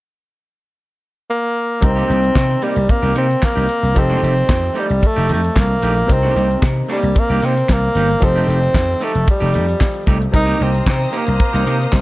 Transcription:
1.30 A#3
1.81 C2 C3 C4 D#4 A#4, muted clean electric guitar stroke, kick, closed hi-hat
1.85 C4
1.96 A#3 D#4 G4
2.08 C2 A#3 D#4 G4, closed hi-hat
2.23 closed hi-hat
2.35 C3, kick, snare, clap
2.49 muted clean electric guitar stroke
2.62 G3 A#3 D#4 G4, closed hi-hat
2.76 C2, muted clean electric guitar stroke, closed hi-hat
2.88 A#3, muted clean electric guitar stroke, kick, closed hi-hat
3.02 C2 A#3 D#4 G4
3.14 C3 A#3 C4 D#4 G4, closed hi-hat
3.29 muted clean electric guitar stroke, closed hi-hat
3.41 A#3, muted clean electric guitar stroke, kick, snare, clap
3.55 C2 A#3 D#4 G4, closed hi-hat
3.69 closed hi-hat
3.83 C2, muted clean electric guitar stroke, closed hi-hat
3.94 F1 F3 D#4 G4 A4, muted clean electric guitar stroke, kick, closed hi-hat
3.99 C4
4.09 A3 D#4 G4, closed hi-hat
4.22 F1 A3 D#4 G4, closed hi-hat
4.37 closed hi-hat
4.49 F2, kick, snare, clap
4.63 muted clean electric guitar stroke
4.74 A3 D#4 G4, closed hi-hat
4.79 G3
4.89 C2, muted clean electric guitar stroke, closed hi-hat
5.01 muted clean electric guitar stroke, kick, closed hi-hat
5.06 A3
5.16 F1 A3 D#4 G4
5.29 F2 A3 D#4 G4, closed hi-hat
5.33 A3
5.44 muted clean electric guitar stroke, closed hi-hat
5.56 C2 A#3, kick, snare, clap
5.70 muted clean electric guitar stroke
5.82 A#1 A3 D#4 G4, closed hi-hat
5.97 muted clean electric guitar stroke, closed hi-hat
6.07 C2 C3 C4 D#4 A#4, muted clean electric guitar stroke, kick, closed hi-hat
6.13 C4
6.23 A#3 D#4 G4
6.35 C2 A#3 D#4 G4, closed hi-hat
6.50 muted clean electric guitar stroke, closed hi-hat
6.62 C3, kick, snare, clap
6.76 muted clean electric guitar stroke
6.89 G3 A#3 D#4 G4, closed hi-hat
7.02 C2, muted clean electric guitar stroke, closed hi-hat
7.15 A#3, muted clean electric guitar stroke, kick, closed hi-hat
7.30 C2 A#3 D#4 G4
7.42 C3 A#3 C4 D#4 G4, closed hi-hat
7.57 closed hi-hat
7.69 C2, kick, snare, clap
7.73 A#3
7.83 muted clean electric guitar stroke
7.95 G1 A#3 D#4 G4, closed hi-hat
8.10 muted clean electric guitar stroke, closed hi-hat
8.20 F1 F3 D#4 G4 A4, muted clean electric guitar stroke, kick, closed hi-hat
8.24 C4
8.35 A3 D#4 G4
8.48 F1 A3 D#4 G4, closed hi-hat
8.62 muted clean electric guitar stroke, closed hi-hat
8.74 F2, kick, snare, clap
8.87 muted clean electric guitar stroke, closed hi-hat
9.00 A3 D#4 G4, closed hi-hat
9.14 F1, muted clean electric guitar stroke, closed hi-hat
9.26 muted clean electric guitar stroke, kick, closed hi-hat
9.30 G3
9.40 F1 A3 D#4 G4
9.54 F2 A3 D#4 G4, closed hi-hat
9.69 closed hi-hat
9.81 kick, snare, clap
9.94 muted clean electric guitar stroke, closed hi-hat
10.07 C2 A3 D#4 G4, kick, closed hi-hat
10.20 muted clean electric guitar stroke, closed hi-hat
10.31 C2 C3 C4 D#4 A#4 C5 A#5 D#6, muted clean electric guitar stroke, kick, closed hi-hat
10.36 D#4
10.46 A#3 D#4 G4
10.59 C2 A#3 D#4 G4, closed hi-hat
10.63 C4
10.74 closed hi-hat
10.86 C3 C4, kick, snare, clap
11.00 muted clean electric guitar stroke
11.12 A#3 D#4 G4, closed hi-hat
11.17 A#3
11.27 C2, muted clean electric guitar stroke, closed hi-hat
11.39 muted clean electric guitar stroke, kick, closed hi-hat
11.53 C2 A#3 D#4 G4, closed hi-hat
11.66 C3 A#3 D#4 G4, closed hi-hat
11.80 muted clean electric guitar stroke, closed hi-hat
11.91 C2 C3 C4 D#4 A#4, kick, snare, clap

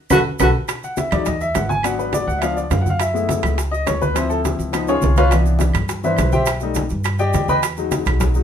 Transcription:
0.10 B1 F#4 A4 B4, low bongo, high conga, high timbale, claves, maracas
0.39 B1 F#4 A4 B4, low bongo, high conga, high timbale, claves, maracas
0.68 high bongo, high conga, high timbale, claves, maracas
0.83 F#5, high conga, maracas
0.97 E5, high bongo, high conga, high timbale, low timbale, maracas
1.11 E2 F#3 G#3 D#4 D5, high bongo, high conga, low conga, high timbale, claves, maracas
1.26 D#5, high bongo, high conga, low conga, high timbale, maracas
1.41 E5, high bongo, high conga, maracas
1.55 G#1 F#5, high bongo, low bongo, high conga, high timbale, low timbale, claves, maracas
1.69 G#5, high bongo, high conga, maracas
1.83 F#3 B3 D4 F#5, high bongo, high conga, high timbale, claves, maracas
1.99 B4, high conga, maracas
2.13 D5, high bongo, high conga, high timbale, low timbale, maracas
2.27 C#2 F#5, high bongo, high conga, maracas
2.38 F3 E5, high conga, high timbale, claves
2.42 B3 D4 F5, high bongo, maracas
2.56 D5, high bongo, high conga, maracas
2.70 F#2 F5, high bongo, low bongo, high conga, high timbale, low timbale, maracas
2.81 F#5
2.86 high bongo, high conga, maracas
2.90 F5
2.99 E5, high bongo, high conga, high timbale, claves, maracas
3.14 G#3 A3 B3 E4, high conga, maracas
3.29 high bongo, high conga, high timbale, low timbale, maracas
3.43 C#2, high bongo, high conga, low conga, high timbale, claves, maracas
3.58 high bongo, high conga, high timbale, maracas
3.71 D#5, high bongo, high conga, maracas
3.86 D2 C#5, high bongo, low bongo, high conga, high timbale, low timbale, claves, maracas
4.01 B4, high bongo, high conga, maracas
4.14 F3 C4 E4 C5, high bongo, high conga, high timbale, claves, maracas
4.30 A4, high conga, maracas
4.45 high bongo, high conga, high timbale, low timbale, maracas
4.59 C#2, high bongo, high conga, maracas
4.73 F3 B3 D#4, high bongo, high conga, high timbale, claves, maracas
4.88 C#4 F4 G#4 C#5, high bongo, high conga, high timbale, maracas
5.02 C2, high bongo, low bongo, high conga, high timbale, maracas
5.16 F4 B4 C#5 F5, high bongo, high conga, low timbale, maracas
5.31 E3 B3 D4, high bongo, high conga, high timbale, claves, maracas
5.45 high conga, maracas
5.59 high bongo, high conga, high timbale, low timbale, maracas
5.74 G2, high bongo, high conga, low conga, high timbale, claves, maracas
5.89 high bongo, high conga, high timbale, maracas
6.04 E3 B3 D4 E4 B4 C5 E5, high bongo, high conga, maracas
6.17 B1, high bongo, low bongo, high conga, high timbale, low timbale, claves, maracas
6.32 G4 C5 E5 G5, high bongo, high conga, maracas
6.46 high bongo, high conga, high timbale, claves, maracas
6.60 G3 A3 D#4, high conga, maracas
6.74 high bongo, high conga, high timbale, low timbale, maracas
6.89 G2, high bongo, high conga, maracas
7.04 high bongo, high conga, high timbale, claves, maracas
7.19 G4 D5 D#5 G5, high bongo, high conga, maracas
7.33 E2, high bongo, low bongo, high conga, high timbale, low timbale, maracas
7.48 B4 D#5 G5 B5, high bongo, high conga, maracas
7.63 high bongo, high conga, high timbale, claves, maracas
7.77 F#3 G#3 D#4, high conga, maracas
7.91 high bongo, high conga, high timbale, low timbale, maracas
8.05 B1, high bongo, high conga, low conga, high timbale, claves, maracas
8.20 high bongo, high conga, low conga, high timbale, maracas
8.34 F#3 G#3 D#4, high bongo, high conga, maracas

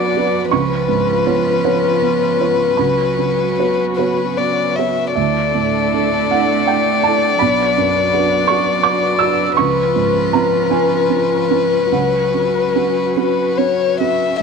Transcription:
Already playing: B1 F#2 F#3 B3 D4 F#4 B4 D5 B5 D6
0.17 B3 F#4 D5
0.51 C#2 F3 C#4 F4 B4 C#6
0.89 G#2
1.26 B3 F4 C#5
1.64 B3 F4 C#5
2.02 B3
2.40 B3 F4 C#5
2.77 C#2 F#3 F#4 B4 B5
3.18 C#3
3.59 B3 F#4 C#5
3.97 B3 F#4 B4 C#5
4.37 B3 D5
4.76 B3 F#4 C#5 E5
5.15 D2 A3 D4 E4 A4 D5 E5
5.55 A2
5.93 D4 E4 A4
6.31 D4 E4 A4 F#5
6.67 D4 G5
7.03 D4 E4 A4 A5
7.39 B1 F#3 F#4 B4 B5
7.78 F#2
8.14 D4 F#4 B4
8.48 D4 F#4 B4 C#6
8.83 D4 D6
9.19 D4 F#4 E6
9.23 B4
9.57 C#2 F3 C#4 F4 B4 C#6
9.96 G#2
10.33 C#4 F4 B4 A#5
10.71 C#4 F4 B4 G#5
11.10 C#4
11.51 C#4 F4 B4
11.90 C#2 F#3 F#4 B4 F#5
12.34 C#3
12.75 C#4 F#4 B4
13.16 C#4 F#4 B4
13.57 C#4 C#5
14.00 C#4 F#4 B4 E5

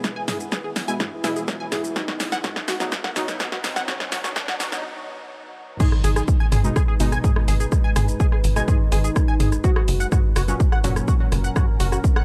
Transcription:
Already playing: B2 E3 G#3 B3 E4 G#4, riser
0.04 kick, snare, shaker
0.16 G#5
0.28 G#4, snare, mid tom, open hi-hat, shaker
0.40 shaker
0.52 G#4, kick, snare, shaker
0.64 G#4
0.76 snare, open hi-hat, shaker
0.88 B2 G#3 E4 G#5, shaker
1.00 E4 G#4, kick, snare, mid tom, shaker
1.24 B2 G#3 E4 G#4, snare, open hi-hat, shaker
1.36 G#4, shaker
1.48 kick, snare, shaker
1.60 G#5
1.72 G#4, snare, mid tom, open hi-hat, shaker
1.84 shaker
1.96 B2 F#3 D#4 F#4, kick, snare, shaker
2.08 F#4, snare
2.20 snare, open hi-hat, shaker
2.32 F#5, snare, shaker
2.44 F#4, kick, snare, mid tom, shaker
2.56 snare
2.68 F#4, snare, open hi-hat, shaker
2.80 B2 F#3 D#4 F#4, snare, shaker
2.92 kick, snare, shaker
3.04 F#5, snare
3.16 B2 F#3 D#4 F#4, snare, mid tom, open hi-hat, shaker
3.28 snare, shaker
3.40 F#4, kick, snare, shaker
3.52 F#4, snare
3.64 snare, open hi-hat, shaker
3.76 F#5, snare, shaker
3.88 F#4, kick, snare, mid tom, shaker
4.00 snare
4.12 F#4, snare, open hi-hat, shaker
4.24 F#4, snare, shaker
4.36 kick, snare, shaker
4.48 F#5, snare
4.60 F#4, snare, mid tom, open hi-hat, shaker
4.72 B2 F#3 D#4, snare, shaker
5.80 G#3 D#4 G#4 B4 G#5, kick, mid tom, crash, shaker
5.92 cross-stick
6.04 G#1 G#4 G#5, open hi-hat, shaker
6.16 G#4 G#5, cross-stick, shaker
6.28 kick, shaker
6.40 G#5 G#6
6.52 G#1 G#4 G#5, cross-stick, mid tom, open hi-hat, shaker
6.64 B2 G#3 D#4, shaker
6.76 G#4 G#5, kick, cross-stick, shaker
6.88 G#4 G#5
7.00 G#1 B2 G#3 D#4, open hi-hat, shaker
7.12 G#5 G#6, cross-stick, shaker
7.24 G#4 G#5, kick, mid tom, shaker
7.36 cross-stick
7.48 G#1 G#4 G#5, open hi-hat, shaker
7.60 G#4 G#5, shaker
7.72 kick, cross-stick, shaker
7.84 G#5 G#6
7.96 G#1 G#4 G#5, cross-stick, mid tom, open hi-hat, shaker
8.08 shaker
8.20 G#4 G#5, kick, shaker
8.32 G#4 G#5, cross-stick
8.44 G#1, open hi-hat, shaker
8.56 B2 G#3 D#4 G#5 G#6, cross-stick, shaker
8.68 D#4 G#4 G#5, kick, mid tom, shaker
8.92 G#1 G#4 G#5, cross-stick, open hi-hat, shaker
9.04 G#4 G#5, shaker
9.16 kick, cross-stick, shaker
9.28 G#5 G#6
9.40 G#1 G#4 G#5, mid tom, open hi-hat, shaker
9.52 cross-stick, shaker
9.64 C#4 F#4 A#4 F#5, kick, shaker
9.76 F#4 F#5, cross-stick
9.88 F#1, open hi-hat, shaker
10.00 F#5 F#6, shaker
10.12 F#4 F#5, kick, cross-stick, mid tom, shaker
10.36 F#1 F#4 F#5, cross-stick, open hi-hat, shaker
10.48 A#2 F#3 C#4 F#4 F#5, shaker
10.60 kick, shaker
10.72 F#5 F#6, cross-stick
10.84 F#1 A#2 F#3 C#4 F#4 F#5, mid tom, open hi-hat, shaker
10.96 cross-stick, shaker
11.08 F#4 F#5, kick, shaker
11.20 F#4 F#5
11.32 F#1, cross-stick, open hi-hat, shaker
11.44 F#5 F#6, shaker
11.56 E4 F#4 F#5, kick, cross-stick, mid tom, shaker
11.80 F#1 F#4 F#5, open hi-hat, shaker
11.92 F#4 F#5, cross-stick, shaker
12.04 kick, shaker
12.16 F#5 F#6, cross-stick

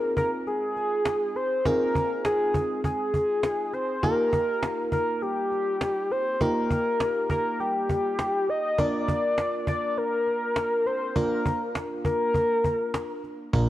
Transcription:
Already playing: C4 D#4 F4 G#4 A#4
0.17 A#4, cajon bass
0.47 G#4, cajon slap
0.76 cajon slap
1.06 cajon slap
1.35 C5, cajon slap
1.65 C4 D#4 F4 G#4 A#4, cajon bass
1.95 cajon bass
2.25 G#4, cajon slap
2.54 cajon bass
2.84 G#4, cajon bass
3.14 cajon bass
3.43 cajon slap
3.73 C5, cajon slap
4.03 A#3 D#4 F4 G4 A#4, cajon bass
4.33 cajon bass
4.63 cajon slap
4.92 A#4, cajon bass
5.22 G4, cajon slap
5.52 cajon slap
5.81 cajon slap
6.11 C5, cajon slap
6.41 A#3 D#4 F4 G4 A#4, cajon bass
6.70 cajon bass
7.00 cajon slap
7.30 A#4, cajon bass
7.59 G4, cajon slap
7.89 cajon bass
8.19 cajon slap
8.49 D#5, cajon slap
8.78 A#3 D4 F4 A#4 D5, cajon bass
9.08 cajon bass
9.38 cajon slap
9.67 D5, cajon bass
9.97 A#4, cajon slap
10.27 cajon slap
10.56 cajon slap
10.86 C5, cajon slap
11.16 A#3 D4 F4 A#4, cajon bass
11.46 cajon bass
11.75 cajon slap
12.05 A#4, cajon bass
12.35 cajon bass
12.64 cajon bass
12.94 cajon slap
13.24 cajon slap
13.53 A#1 A#3 D4 F4 A#4, cajon bass

